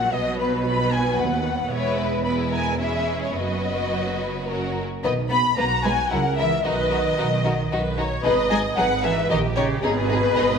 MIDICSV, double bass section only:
0, 0, Header, 1, 2, 480
1, 0, Start_track
1, 0, Key_signature, 5, "major"
1, 0, Tempo, 529568
1, 124, Time_signature, 3, 2, 24, 8
1, 2044, Tempo, 553506
1, 4924, Tempo, 531444
1, 9448, End_track
2, 0, Start_track
2, 0, Title_t, "Double bass section"
2, 0, Program_c, 0, 48
2, 0, Note_on_c, 0, 34, 64
2, 122, Note_on_c, 0, 35, 67
2, 124, Note_off_c, 0, 34, 0
2, 1061, Note_off_c, 0, 35, 0
2, 1082, Note_on_c, 0, 39, 62
2, 1558, Note_on_c, 0, 28, 65
2, 1559, Note_off_c, 0, 39, 0
2, 2968, Note_off_c, 0, 28, 0
2, 3005, Note_on_c, 0, 30, 55
2, 4254, Note_off_c, 0, 30, 0
2, 4457, Note_on_c, 0, 35, 73
2, 4870, Note_off_c, 0, 35, 0
2, 4927, Note_on_c, 0, 35, 74
2, 5353, Note_off_c, 0, 35, 0
2, 5412, Note_on_c, 0, 37, 73
2, 5835, Note_off_c, 0, 37, 0
2, 5889, Note_on_c, 0, 35, 73
2, 6314, Note_off_c, 0, 35, 0
2, 6371, Note_on_c, 0, 35, 77
2, 6795, Note_off_c, 0, 35, 0
2, 6850, Note_on_c, 0, 35, 72
2, 7274, Note_off_c, 0, 35, 0
2, 7332, Note_on_c, 0, 32, 80
2, 7751, Note_off_c, 0, 32, 0
2, 7809, Note_on_c, 0, 32, 81
2, 8234, Note_off_c, 0, 32, 0
2, 8292, Note_on_c, 0, 34, 81
2, 8713, Note_off_c, 0, 34, 0
2, 8769, Note_on_c, 0, 32, 91
2, 9191, Note_off_c, 0, 32, 0
2, 9250, Note_on_c, 0, 32, 91
2, 9448, Note_off_c, 0, 32, 0
2, 9448, End_track
0, 0, End_of_file